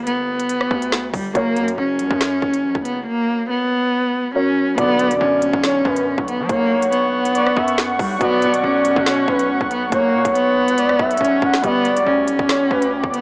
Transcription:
Already playing: G1 G3 G4
0.06 B3, closed hi-hat
0.40 closed hi-hat
0.49 closed hi-hat
0.61 cross-stick
0.71 D2, kick
0.82 closed hi-hat
0.92 snare
1.14 G1 G3, kick, open hi-hat
1.34 F#1 F#3 A#3 F#4 A#4 C#5, kick, closed hi-hat
1.56 F#2, closed hi-hat
1.68 closed hi-hat
1.78 F#1 C#4
1.99 C#2, closed hi-hat
2.11 F#2, kick
2.21 snare, closed hi-hat
2.42 F#1, kick
2.54 closed hi-hat
2.64 A#1
2.75 F#1, kick
2.85 B3, closed hi-hat
3.06 A#3
3.50 B3
4.34 F#3 C#4 F#4 A#4 C#5
4.77 B1 B2 D3 F#3 B3 D5 F#5 C#6, kick, closed hi-hat
4.99 closed hi-hat
5.11 F#2, closed hi-hat
5.20 F#2 C#4
5.42 D2, closed hi-hat
5.53 B1, kick
5.64 C#5, snare, closed hi-hat
5.85 F#2 B4, kick
5.96 closed hi-hat
6.18 B1, kick
6.28 B3, closed hi-hat
6.39 F#3
6.49 B1 A#3 C#5, kick, closed hi-hat
6.82 closed hi-hat
6.92 B3, closed hi-hat
7.25 closed hi-hat
7.35 D5, closed hi-hat
7.46 cross-stick
7.57 F#2 E5, kick
7.68 closed hi-hat
7.78 snare
7.99 B1 G3, kick, open hi-hat
8.20 B1 B2 F#3 B3 F#4 D5, kick, closed hi-hat
8.42 B2, closed hi-hat
8.54 closed hi-hat
8.64 B1 C#4
8.85 F#2, closed hi-hat
8.96 B2, kick
9.06 C#5, snare, closed hi-hat
9.28 B1 B4, kick
9.39 closed hi-hat
9.49 D2
9.61 B1, kick
9.71 B3, closed hi-hat
9.92 B1 A#3 C#5, kick, closed hi-hat
10.14 B2
10.25 B1, kick, closed hi-hat
10.35 B3, closed hi-hat
10.68 C#2, closed hi-hat
10.78 D5, closed hi-hat
10.89 cross-stick
10.99 B1 E5, kick
11.11 closed hi-hat
11.17 B1 C#4, kick, closed hi-hat
11.25 closed hi-hat
11.42 B1 F#5, kick
11.54 snare
11.62 G1 G3 B3 G4 D5 G5 D6, kick, closed hi-hat
11.85 closed hi-hat
11.96 D2, closed hi-hat
12.06 D2 C#4
12.28 B1, closed hi-hat
12.39 G1, kick
12.49 C#5, snare, closed hi-hat
12.71 D2 B4, kick
12.82 closed hi-hat
13.04 G1, kick
13.14 B3, closed hi-hat

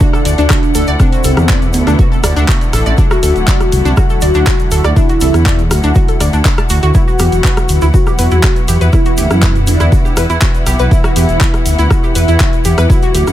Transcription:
Already playing: D3 A3 E4 F#5
0.00 D4 F#4, kick, closed hi-hat, shaker
0.13 A4, cross-stick, shaker
0.25 D2 D5, open hi-hat, shaker
0.38 D2 D4, closed hi-hat, shaker
0.50 F#4, kick, cross-stick, clap, closed hi-hat, shaker
0.63 closed hi-hat, shaker
0.75 D2 A4, open hi-hat, shaker
0.87 D2 D5, closed hi-hat, shaker
1.00 C4 D4, kick, cross-stick, closed hi-hat, shaker
1.12 F#4, closed hi-hat, shaker
1.24 C2 A4, open hi-hat, shaker
1.37 E2, cross-stick, closed hi-hat, shaker
1.49 D5, kick, clap, shaker
1.62 closed hi-hat, shaker
1.73 D2 B3, open hi-hat, shaker
1.87 D2 D4, cross-stick, closed hi-hat, shaker
1.99 F#4, kick, closed hi-hat, shaker
2.12 A4, shaker
2.24 D2 D5, cross-stick, open hi-hat, shaker
2.36 D2 D4, closed hi-hat, shaker
2.48 F#4, kick, clap, open hi-hat, shaker
2.61 closed hi-hat, shaker
2.73 A1 A4, cross-stick, open hi-hat, shaker
2.86 A1 D5, closed hi-hat, shaker
2.98 D4 F#4, kick, closed hi-hat, shaker
3.11 F#4, cross-stick, shaker
3.23 D2 A4, open hi-hat, shaker
3.36 D1, closed hi-hat, shaker
3.48 D5, kick, clap, closed hi-hat, shaker
3.60 cross-stick, closed hi-hat, shaker
3.72 C2, open hi-hat, shaker
3.85 C2 D4, closed hi-hat, shaker
3.97 F#4, kick, cross-stick, closed hi-hat, shaker
4.10 A4, shaker
4.21 D2 D5, open hi-hat, shaker
4.34 D2 D4, closed hi-hat, shaker
4.47 F#4, kick, cross-stick, clap, closed hi-hat, shaker
4.59 closed hi-hat, shaker
4.71 D2 A4, open hi-hat, shaker
4.84 D2 D5, cross-stick, closed hi-hat, shaker
4.96 D4 E4, kick, closed hi-hat, shaker
5.09 F#4, closed hi-hat, shaker
5.21 C2 A4, open hi-hat, shaker
5.34 E2, cross-stick, closed hi-hat, shaker
5.46 D5, kick, clap, closed hi-hat, shaker
5.59 closed hi-hat, shaker
5.71 D2 F#4, cross-stick, open hi-hat, shaker
5.83 D2 D4, closed hi-hat, shaker
5.95 F#4, kick, closed hi-hat, shaker
6.08 A4, closed hi-hat, shaker
6.20 D2 D5, cross-stick, open hi-hat, shaker
6.33 D2 D4, closed hi-hat, shaker
6.45 D4, kick, clap, open hi-hat, shaker
6.58 A5, cross-stick, closed hi-hat, shaker
6.69 D2 F#4, open hi-hat, shaker
6.83 D2 F#4, closed hi-hat, shaker
6.94 E3 B3 E4 F#4 F#5, kick, closed hi-hat, shaker
7.08 F#4, shaker
7.19 E2 G4, cross-stick, open hi-hat, shaker
7.32 E1, closed hi-hat, shaker
7.44 B4, kick, clap, closed hi-hat, shaker
7.57 cross-stick, closed hi-hat, shaker
7.69 D2, open hi-hat, shaker
7.82 D2 E4, closed hi-hat, shaker
7.94 F#4, kick, closed hi-hat, shaker
8.07 G4, cross-stick, shaker
8.19 E2 B4, open hi-hat, shaker
8.31 E2 E4, closed hi-hat, shaker
8.43 F#4, kick, cross-stick, clap, closed hi-hat, shaker
8.56 closed hi-hat, shaker
8.68 E2 G4, open hi-hat, shaker
8.81 E2 B4, closed hi-hat, shaker
8.93 E4, kick, cross-stick, closed hi-hat, shaker
9.05 F#4, closed hi-hat, shaker
9.18 D2 G4, open hi-hat, shaker
9.30 F#2, cross-stick, closed hi-hat, shaker
9.42 B4, kick, clap, closed hi-hat, shaker
9.55 closed hi-hat, shaker
9.67 E2 D4, open hi-hat, shaker
9.80 E2 E4, cross-stick, closed hi-hat, shaker
9.92 F#4, kick, closed hi-hat, shaker
10.05 G4, shaker
10.17 E2 B4, cross-stick, open hi-hat, shaker
10.30 E2 E4, closed hi-hat, shaker
10.42 F#4, kick, clap, open hi-hat, shaker
10.55 closed hi-hat, shaker
10.67 B1 G4, cross-stick, open hi-hat, shaker
10.79 B1 B4, closed hi-hat, shaker
10.91 E4, kick, closed hi-hat, shaker
11.04 F#4, cross-stick, shaker
11.16 E2 G4, open hi-hat, shaker
11.29 E1, closed hi-hat, shaker
11.41 B4, kick, clap, closed hi-hat, shaker
11.54 cross-stick, closed hi-hat, shaker
11.66 D2, open hi-hat, shaker
11.79 D2 E4, closed hi-hat, shaker
11.90 E4 F#4, kick, cross-stick, closed hi-hat, shaker
12.04 G4, shaker
12.15 E2 B4, open hi-hat, shaker
12.28 E2 E4, closed hi-hat, shaker
12.40 F#4, kick, cross-stick, clap, closed hi-hat, shaker
12.53 closed hi-hat, shaker
12.65 E2 G4, open hi-hat, shaker
12.78 E2 B4, cross-stick, closed hi-hat, shaker
12.90 E4 F#4, kick, closed hi-hat, shaker
13.02 F#4, closed hi-hat, shaker
13.15 D2 G4, open hi-hat, shaker
13.27 F#2, cross-stick, closed hi-hat, shaker

